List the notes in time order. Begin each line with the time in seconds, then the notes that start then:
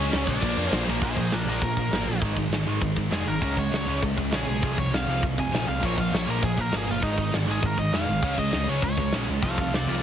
Already playing: C#3 G#3 C#4 C#5
0.00 C#4
0.12 C#2 C#3 G#3 C#4, snare, crash
0.26 A#1 C#3 G#3 C#4 D4 D5, kick, crash
0.41 A#1 A#2 F3 A#3, kick, crash
0.56 F2 A#2 F3 A#3, crash
0.71 A#1 A#2 F3 A#3 C5, snare, crash
0.87 A#1 A#2 F3 A#3, snare
1.00 A#1 A#2 G#4, kick, crash
1.04 A#2 F3 A#3 C5
1.16 A#1 A#2 F3, kick
1.21 G#4 C5
1.32 A#1 A#2 F3 D4 A#4, snare, open hi-hat
1.46 A#1 A#2 F3 A#3 D4
1.50 A#4
1.62 A#1 A#2 F3 A#4, kick, open hi-hat
1.77 A#1 A#2 F3, kick
1.91 G#1 A#2, snare, open hi-hat
1.95 F3 A#3
2.06 A#1 A#2 F3 A#3
2.21 G#1 G#2 D#3, kick, open hi-hat
2.26 G#3
2.36 G#1 G#2 D#3, kick
2.49 G#1, snare, open hi-hat
2.53 G#2 D#3
2.66 G#1 G#2 D#3 G#3
2.81 G#1 G#2 D#3, kick, open hi-hat
2.97 G#1 G#2 D#3, kick
3.12 F1 G#2 D#3 G#3 G#4, snare, open hi-hat
3.26 G#1 G#2 D#3 G#3 A#4
3.42 C#2 C#3 G#3 C#4, kick, crash
3.56 C#2 C#3 G#3 C#5, kick
3.72 C#2 C#3 G#3 C#5, snare, open hi-hat
3.86 C#2 C#3 G#3 C#4
4.02 C#2 C#3 G#3, kick, open hi-hat
4.17 C#2 C#3 G#3, kick
4.32 A#1 C#3 G#3 C#4 G#4, snare, open hi-hat
4.46 B1 C#3 G#3 C#4 G#4
4.61 C2 F2 C3 F3, kick, open hi-hat
4.78 C2 F2 C3 C#5, kick
4.92 C2 F2 C3 F5, snare, open hi-hat
5.08 C2 F2 C3 F3
5.23 C2 F2 C3, kick, open hi-hat
5.38 C2 F2 C3 G#5, kick
5.52 A#1 F2 C3 F3, snare, open hi-hat
5.67 C2 F2 C3 F3 F5
5.83 A#1 A#2 F3 A#3 C#5, kick, crash
5.97 A#1 A#2 F3 F5, kick
6.12 A#1 A#2 F3 C#5, snare, open hi-hat
6.27 A#1 A#2 F3 A#3 A#4
6.43 A#1 A#2 F3 G#4, kick, open hi-hat
6.57 A#1 A#2 F3 A#4, kick
6.72 G#1 A#2 F3 A#3, snare, open hi-hat
6.77 G#4
6.87 G1 A#2 F3 A#3
6.91 F4
7.02 G#1 G#2 D#3 G#3 D#4, kick, open hi-hat
7.18 G#1 G#2 D#3, kick
7.32 G#1 G#2 D#3, snare, open hi-hat
7.48 G#1 G#2 D#3 G#3 G#4
7.62 G#1 G#2 D#3 A#4, kick, open hi-hat
7.77 G#1 G#2 D#3 D#5, kick
7.93 F1 G#2 D#3 G#3 F5, snare, open hi-hat
8.06 G#1 G#2 D#3 G#3
8.22 C#2 C#3 G#3 C#4, kick, crash
8.38 C#2 C#3 G#3 D#5, kick
8.51 C#2 C#3 G#3 D#5, snare, open hi-hat
8.69 C#2 C#3 G#3 C#4 C#5
8.81 C#2 C#3 G#3 C#5, kick, open hi-hat
8.97 C#2 C#3 G#3, kick
9.12 A#1 C#3 G#3 C#4, snare, open hi-hat
9.27 C#2 C#3 G#3 C#4
9.42 C2 F2 C3 F3 A4 F5, kick, open hi-hat
9.58 C2 F2 C3 A4 F5, kick
9.72 C2 F2 C3 F4 D5, snare, open hi-hat
9.86 C2 F2 C3 F3 F4 D5